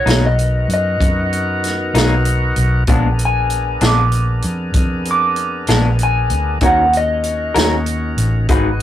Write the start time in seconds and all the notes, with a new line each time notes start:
Already playing: B3 D#4 F#4 A#4 C#5
0.06 B1 B2 F#3 A#3 D#4, snare, closed hi-hat
0.26 D#5
0.39 closed hi-hat
0.68 F#2, closed hi-hat
0.74 D#5
1.00 F#2, kick, closed hi-hat
1.33 closed hi-hat
1.64 snare, closed hi-hat
1.93 B1 B2 F#3 A#3 D#4, snare, closed hi-hat
2.25 closed hi-hat
2.56 B1, closed hi-hat
2.87 A#1 A#2 G#3 B3 D4 G#4 A#4, kick, closed hi-hat
3.19 closed hi-hat
3.25 G#5
3.50 closed hi-hat
3.81 A#1 A#2 G#3 B3 D4, snare, closed hi-hat
3.87 D6
4.12 closed hi-hat
4.42 F2, closed hi-hat
4.74 F2, kick, closed hi-hat
5.05 closed hi-hat
5.11 D6
5.36 closed hi-hat
5.67 A#1 A#2 G#3 B3 D4, snare, closed hi-hat
5.99 closed hi-hat
6.03 G#5
6.30 D2, closed hi-hat
6.61 D#2 D#3 C#4 D#4 F#4 A#4, kick, closed hi-hat
6.66 F#5
6.93 closed hi-hat
6.97 D#5
7.24 closed hi-hat
7.54 D#2 D#3 C#4 F#4 A#4, snare, closed hi-hat
7.86 closed hi-hat
8.17 A1, closed hi-hat
8.49 G#1 G#3 B3 D#4 F#4 G#4 B4, kick, closed hi-hat